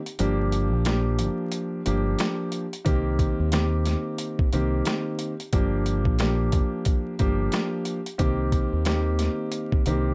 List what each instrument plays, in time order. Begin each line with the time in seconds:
0.06 closed hi-hat
0.19 fingered electric bass G1, grand piano F3 A#3 D4 G4, closed hi-hat
0.52 closed hi-hat
0.73 fingered electric bass A#1
0.85 grand piano F3 A#3 D4 G4, snare, closed hi-hat
1.19 closed hi-hat
1.52 closed hi-hat
1.85 fingered electric bass G1, grand piano F3 A#3 D4 G4, closed hi-hat
2.19 snare, closed hi-hat
2.52 closed hi-hat
2.73 closed hi-hat
2.85 fingered electric bass C2, grand piano D#3 A#3 C4 G4, kick, closed hi-hat
3.19 kick, closed hi-hat
3.39 fingered electric bass D#2
3.52 grand piano D#3 A#3 C4 G4, snare, closed hi-hat
3.85 snare, closed hi-hat
4.18 closed hi-hat
4.39 kick
4.53 fingered electric bass C2, grand piano D#3 A#3 C4 G4, closed hi-hat
4.85 snare, closed hi-hat
5.19 closed hi-hat
5.40 closed hi-hat
5.52 fingered electric bass G1, grand piano F3 A#3 D4 G4, kick, closed hi-hat
5.86 closed hi-hat
6.05 fingered electric bass A#1, kick
6.19 grand piano F3 A#3 D4 G4, snare, closed hi-hat
6.52 kick, closed hi-hat
6.85 kick, closed hi-hat
7.19 fingered electric bass G1, grand piano F3 A#3 D4 G4, kick, closed hi-hat
7.52 snare, closed hi-hat
7.85 closed hi-hat
8.06 closed hi-hat
8.18 fingered electric bass C2, grand piano D#3 A#3 C4 G4, kick, closed hi-hat
8.52 kick, closed hi-hat
8.73 fingered electric bass D#2
8.85 grand piano D#3 A#3 C4 G4, snare, closed hi-hat
9.19 snare, closed hi-hat
9.52 closed hi-hat
9.72 kick
9.86 fingered electric bass C2, grand piano D#3 A#3 C4 G4, closed hi-hat